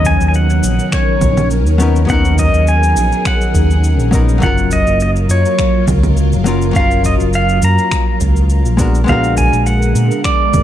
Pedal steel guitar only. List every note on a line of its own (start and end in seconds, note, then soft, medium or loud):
0.06 0.27 G#5 loud
0.28 0.35 G#5 medium
0.36 0.95 F#5 loud
0.94 1.48 C#5 medium
2.10 2.39 F#5 loud
2.39 2.69 D#5 loud
2.68 3.27 G#5 loud
3.27 4.10 F#5 medium
4.43 4.73 F#5 loud
4.73 5.01 D#5 loud
5.02 5.10 D#5 loud
5.31 5.84 C#5 medium
6.76 7.03 F5 medium
7.06 7.13 D#5 medium
7.35 7.64 F5 medium
7.64 8.18 A#5 loud
9.09 9.37 F5 loud
9.38 9.66 G#5 loud
9.66 10.21 F#5 loud
10.25 10.63 D5 medium